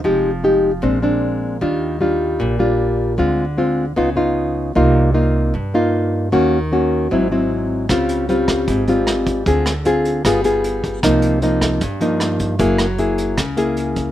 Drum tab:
HH |--------|--------|--------|--------|
SD |--------|--------|--------|--------|
BD |--------|--------|--------|--------|

HH |--------|xxxxxxxx|xxxxxxxx|xxxxxxxx|
SD |--------|r--r--r-|-r--r---|r--r--r-|
BD |--------|o--oo--o|o---o--o|o--oo--o|

HH |xxxxxxxx|
SD |-r--r---|
BD |o---o--o|